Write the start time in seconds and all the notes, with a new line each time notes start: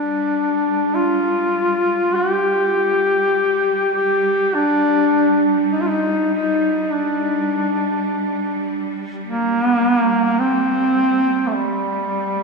Already playing: G3 D4
0.95 F4
2.15 G4
3.94 G4
4.54 D4
5.72 D#4
5.81 F4
5.88 D#4
6.33 D#4
6.92 D4
9.25 A#3
10.39 C4
11.47 A3
11.54 G3